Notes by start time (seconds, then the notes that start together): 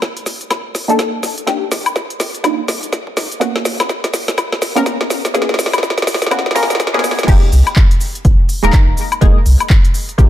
Already playing: A#3 D4 D#4 F4
0.02 kick, snare, shaker
0.17 closed hi-hat
0.26 snare, open hi-hat, shaker
0.41 closed hi-hat, shaker
0.50 D#2, kick, snare, closed hi-hat, high woodblock, shaker
0.75 snare, open hi-hat, shaker
0.88 A#1 A#3 D4 D#4 A4, closed hi-hat, shaker
0.99 kick, snare, closed hi-hat, shaker
1.13 C2
1.23 snare, open hi-hat, shaker
1.38 closed hi-hat, shaker
1.47 C2 A#3 D4 D#4 G4, kick, snare, closed hi-hat, shaker
1.72 G1, snare, open hi-hat, shaker
1.86 closed hi-hat, high woodblock, shaker
1.96 kick, snare, shaker
2.10 closed hi-hat
2.20 snare, open hi-hat, shaker
2.35 closed hi-hat, shaker
2.44 F2 A#3 D4 D#4 F4, kick, snare, closed hi-hat, high woodblock, shaker
2.68 C2, snare, open hi-hat, shaker
2.83 closed hi-hat, shaker
2.92 kick, snare, closed hi-hat, shaker
3.07 kick
3.17 G#2, snare, open hi-hat, shaker
3.31 closed hi-hat, shaker
3.40 G#1 A#3 B3 C#4 F#4, kick, snare, closed hi-hat, shaker
3.56 snare
3.65 D#2, snare, open hi-hat, shaker
3.80 snare, closed hi-hat, high woodblock, shaker
3.89 kick, snare, shaker
4.04 snare, closed hi-hat
4.14 snare, open hi-hat, shaker
4.28 snare, closed hi-hat, shaker
4.38 B1, kick, snare, closed hi-hat, high woodblock, shaker
4.52 snare
4.62 snare, open hi-hat, shaker
4.75 A#3 B3 C#4 A#4, snare, closed hi-hat, shaker
4.86 kick, snare, closed hi-hat, shaker
5.01 G#1, snare
5.10 snare, open hi-hat, shaker
5.25 snare, closed hi-hat, shaker
5.34 G#1 A#3 B3 C#4 G#4, kick, snare, closed hi-hat, shaker
5.42 snare
5.49 snare
5.54 snare
5.59 D#2, snare, open hi-hat, shaker
5.66 snare
5.73 snare, closed hi-hat, high woodblock, shaker
5.78 snare
5.83 kick, snare, shaker
5.90 snare
5.98 snare, closed hi-hat
6.02 snare
6.07 snare, open hi-hat, shaker
6.14 snare
6.22 snare, closed hi-hat, shaker
6.26 snare
6.31 A#3 B3 C#4 F#4, kick, snare, closed hi-hat, high woodblock, shaker
6.39 snare
6.46 snare
6.51 A#3, snare
6.55 B3 C#4 A#4, snare, open hi-hat, shaker
6.63 snare
6.70 snare, closed hi-hat, shaker
6.75 snare
6.80 kick, snare, closed hi-hat, shaker
6.87 snare
6.94 A#3 B3 C#4 G#4, kick, snare
6.99 snare
7.04 snare, open hi-hat, shaker
7.11 snare
7.18 G#1, snare, closed hi-hat, shaker
7.23 G#3, snare
7.28 F1 A#3 D#4 G4, kick, closed hi-hat, crash, shaker
7.52 C2, open hi-hat, shaker
7.67 closed hi-hat, high woodblock, shaker
7.76 kick, clap, shaker
7.91 closed hi-hat
8.01 open hi-hat, shaker
8.15 closed hi-hat, shaker
8.25 G#1, kick, closed hi-hat, shaker
8.49 open hi-hat, shaker
8.63 D#1 G#3 A#3 D#4 A#4, closed hi-hat, shaker
8.73 kick, clap, closed hi-hat, shaker
8.88 F1
8.97 open hi-hat, shaker
9.12 closed hi-hat, high woodblock, shaker
9.21 F1 G#3 A#3 D#4 G#4, kick, closed hi-hat, shaker
9.46 C2, open hi-hat, shaker
9.60 closed hi-hat, high woodblock, shaker
9.70 kick, clap, shaker
9.85 closed hi-hat
9.94 open hi-hat, shaker
10.09 closed hi-hat, shaker
10.18 A#1 G#3 A#3 D#4 G4, kick, closed hi-hat, shaker